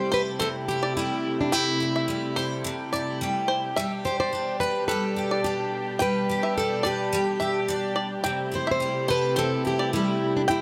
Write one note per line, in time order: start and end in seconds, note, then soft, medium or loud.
0.00 0.38 C3 medium
0.00 3.72 C3 medium
0.00 0.96 G3 medium
0.00 3.72 A3 medium
0.00 0.67 E4 medium
0.00 3.72 E4 medium
0.00 10.62 G4 medium
0.00 0.13 C5 loud
0.12 2.35 A4 medium
0.12 0.21 B4 loud
0.12 0.38 C5 medium
0.39 1.51 C3 medium
0.39 0.48 A4 loud
0.39 0.54 C5 medium
0.68 1.79 E4 medium
0.68 0.96 G4 medium
0.83 1.09 D5 medium
0.97 2.08 G3 medium
0.97 1.37 E4 medium
1.41 1.53 D4 medium
1.52 2.63 C3 medium
1.52 2.65 E4 medium
1.52 1.67 G5 loud
1.80 2.92 E4 medium
1.96 2.07 E5 medium
2.08 3.21 G3 medium
2.36 3.83 A4 medium
2.36 2.63 C5 medium
2.64 3.82 C3 medium
2.93 3.83 E4 medium
2.93 3.19 D5 medium
3.21 3.77 G3 medium
3.48 3.63 C5 medium
3.76 8.20 B2 medium
3.76 8.20 G3 medium
3.76 4.89 G3 medium
3.76 8.20 D4 medium
3.76 3.91 E5 loud
4.05 5.16 G4 medium
4.05 4.19 C5 loud
4.20 4.57 C5 loud
4.20 4.32 D5 medium
4.33 5.43 D4 medium
4.60 4.87 B4 medium
4.60 4.88 B4 loud
4.60 6.83 B4 medium
4.88 6.00 G3 medium
4.88 5.40 A4 medium
4.88 5.03 B4 medium
5.16 6.29 G4 medium
5.31 5.58 D5 medium
5.44 6.56 D4 medium
5.44 5.96 G4 medium
5.99 7.12 G3 medium
5.99 6.57 B4 loud
5.99 6.14 G5 loud
6.29 7.40 G4 medium
6.43 6.55 E5 medium
6.58 7.67 D4 medium
6.58 6.86 A4 medium
6.83 7.93 G4 medium
6.83 8.31 B4 medium
6.83 7.10 D5 medium
7.13 8.80 G3 medium
7.40 8.51 G4 medium
7.40 7.67 E5 medium
7.68 8.30 D4 medium
7.96 8.11 D5 medium
8.24 9.35 C3 medium
8.24 10.62 C3 medium
8.24 10.62 A3 medium
8.24 10.62 E4 medium
8.24 8.39 G5 loud
8.52 9.63 E4 medium
8.52 8.70 C5 loud
8.67 8.79 E5 medium
8.71 9.07 C5 loud
8.80 9.93 G3 medium
9.08 10.62 A4 medium
9.08 9.38 B4 loud
9.08 9.35 C5 medium
9.36 10.47 C3 medium
9.36 9.66 A4 medium
9.36 9.51 C5 medium
9.65 10.62 E4 medium
9.65 9.93 G4 medium
9.79 10.06 D5 medium
9.93 10.62 G3 medium
9.93 10.33 E4 medium
10.37 10.42 D4 medium
10.48 10.62 C3 medium
10.48 10.62 E4 medium
10.48 10.62 G5 loud